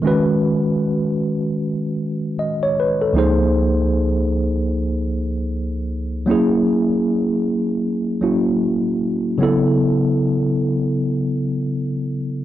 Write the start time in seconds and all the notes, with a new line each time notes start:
0.02 D#3 G#3 C#4 F#4
0.07 B4
2.39 D#5
2.63 C#5
2.80 B4
3.01 A4
3.13 C#2 F3 A#3 D#4
3.17 G#4 C5
6.26 F#3 A#3 C#4 E4
6.31 G#4
8.21 F#3 A#3 C#4 E4 F#4
9.38 C#3 F#3 B3
9.42 E4 A4